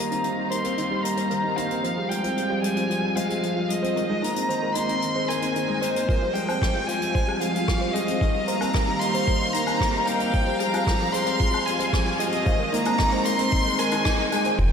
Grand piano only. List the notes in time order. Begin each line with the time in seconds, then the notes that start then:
Already playing: G3 A#3
0.11 C4
0.24 D#3
0.38 G3
0.51 A#3
0.64 C4
0.77 D#3
0.91 G3
1.04 A#3
1.17 C4
1.31 D#3
1.44 G3
1.57 A#3
1.70 C4
1.83 F3
1.97 G3
2.10 G#3
2.23 C4
2.36 F3
2.50 G3
2.63 G#3
2.76 C4
2.89 F3
3.02 G3
3.16 G#3
3.29 C4
3.42 F3
3.56 G3
3.69 G#3
3.82 C4
3.96 D#3
4.09 G#3
4.23 A#3
4.36 C4
4.49 D#3
4.62 G#3
4.76 A#3
4.89 C4
5.02 D#3
5.15 G#3
5.29 A#3
5.42 C4
5.55 D#3
5.69 G#3
5.82 A#3
5.95 C4
6.08 F3
6.21 G3
6.35 G#3
6.48 C4
6.62 F3
6.75 G3
6.88 G#3
7.01 C4
7.14 F3
7.27 G3
7.41 G#3
7.54 C4
7.67 F3
7.81 G3
7.94 G#3
8.08 C4
8.21 D#3
8.34 G3
8.48 A#3
8.61 C4
8.74 D#3
8.88 G3
9.01 A#3
9.15 C4
9.28 D#3
9.41 G3
9.54 A#3
9.67 C4
9.81 D#3
9.94 G3
10.07 A#3
10.20 C4
10.33 F3
10.47 G3
10.60 G#3
10.73 C4
10.86 F3
11.00 G3
11.13 G#3
11.26 C4
11.40 F3
11.53 G3
11.66 G#3
11.79 C4
11.92 F3
12.06 G3
12.19 G#3
12.32 C4
12.46 D#3
12.59 G#3
12.72 A#3
12.86 C4
12.99 D#3
13.12 G#3
13.25 A#3
13.39 C4
13.52 D#3
13.66 G#3
13.79 A#4
13.92 D#3
14.05 D#4
14.19 G#3
14.32 G#3
14.45 D#3
14.58 F3